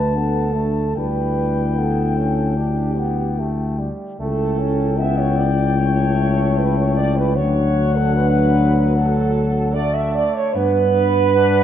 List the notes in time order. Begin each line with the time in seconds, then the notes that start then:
Already playing: D2 A3 D4 B4 A5
0.16 B3 A4
0.56 A3
0.96 D2 G3 E4 B4 G5
1.76 B3 A4
2.17 C#4
2.57 D4 G4
2.98 B3
3.39 A3
3.79 G3
4.20 C#2 A3 E4 A4 G5
4.59 C#4
4.98 B3 E5
5.18 C#5
5.37 D5
5.77 A3 C#5
6.59 B4
6.77 C#5
6.95 D5
7.15 B4
7.36 D2 F#3 D4 C#5 F#5
7.96 A4
8.16 B4
8.94 A4
9.74 A3 D5
9.94 E5
10.14 D5
10.35 C#5
10.54 G2 B3 D4 B4 F#5
11.37 D4